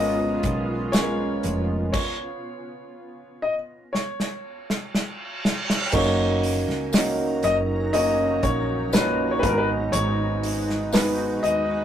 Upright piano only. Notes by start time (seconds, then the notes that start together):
Already playing: G#3 C#4 F4 A#4 B4
0.93 G#3 C#4 F4 G#4
1.01 A#4
5.92 A#3 C#4 D#4 F#4 C#5
6.92 A#3 C#4 D#4 F#4 A#4
7.93 A#3 C#4 D#4 F#4 C#5
8.92 A#2 C#4 D#4 F#4 C#5
9.42 G#2 G#3 B3 D#4 F#4 B4
10.92 G#3 B3 D#4 F#4 B4